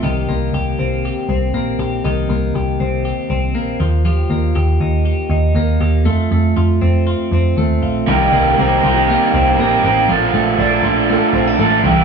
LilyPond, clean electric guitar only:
\new Staff \with { instrumentName = "Clean electric guitar" } { \time 4/4 \key c \dorian \tempo 4 = 119 <ees g'>8 bes8 g'8 c'8 g'8 c'8 bes8 g'8 | <ees g'>8 bes8 g'8 c'8 g'8 c'8 bes8 f8 | <f g'>8 bes8 g'8 ees'8 g'8 ees'8 bes8 g'8 | <a f'>8 a8 f'8 c'8 f'8 c'8 a8 f'8 |
ees8 bes8 c'8 f'16 g'16 bes8 c'8 bes8 c'8 | f8 a8 d'8 f'8 a8 c'16 d'16 a8 e8 | }